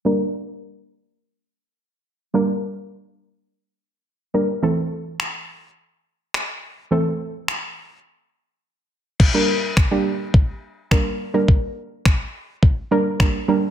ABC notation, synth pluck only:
X:1
M:4/4
L:1/16
Q:1/4=105
K:Gdor
V:1 name="Synth pluck"
[G,B,DB]16 | [G,B,DB]12- [G,B,DB]2 [G,B,DB]2 | [E,A,CA]16 | [E,A,CA]12- [E,A,CA]2 z2 |
z [G,B,DB]3 z [G,B,DG]4- [G,B,DG] z2 [G,B,DB]2 z [G,B,DB]- | [G,B,DB]4 z6 [G,B,DB] z [G,B,DB] z [G,B,DB]2 |]